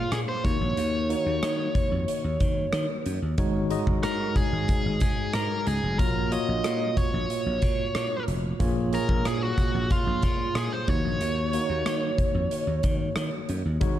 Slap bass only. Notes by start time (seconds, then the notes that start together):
0.12 A#2
0.45 D#2
0.61 A#1
0.77 D#2
1.26 D#2
1.43 D#3
1.92 F2
2.24 D#2
2.41 D#3
2.73 D#3
3.06 F#2
3.22 D#2
3.38 G#1
3.87 G#1
4.04 G#2
4.53 G#1
4.86 G#1
5.01 G#2
5.35 G#2
5.67 C#2
5.83 F1
5.99 A#1
6.48 A#1
6.65 A#2
7.14 A#1
7.46 A#1
7.63 A#2
7.95 A#2
8.28 F1
8.60 A#1
9.09 A#1
9.26 A#2
9.75 A#1
10.07 A#1
10.23 A#2
10.55 A#2
10.88 D#2
11.05 A#1
11.20 D#2
11.70 D#2
11.86 D#3
12.34 F2
12.67 D#2
12.84 D#3
13.16 D#3
13.49 F#2
13.65 D#2
13.81 G#1